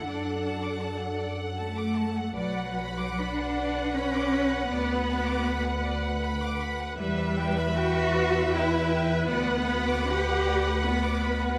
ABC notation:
X:1
M:3/4
L:1/16
Q:1/4=78
K:Bm
V:1 name="Violin section"
d f a d' a f d f a d' a f | d f b d' b f d f b d' b f | d f b d' b f d f b d' b f | [K:Em] B e g b g e B e g b g e |
d f b d' b f d f b d' b f |]
V:2 name="Violin section"
f12 | f12- | f12 | [K:Em] e12 |
f12 |]
V:3 name="Viola section"
A12 | B12- | B12 | [K:Em] B12- |
B12 |]
V:4 name="Cello section"
D6 z2 A,4 | F,4 D4 C4 | B,6 z6 | [K:Em] G,4 F4 E4 |
B,4 G4 B,4 |]
V:5 name="Double bass section" clef=bass
F,,12 | B,,,12 | D,,12 | [K:Em] E,,12 |
D,,12 |]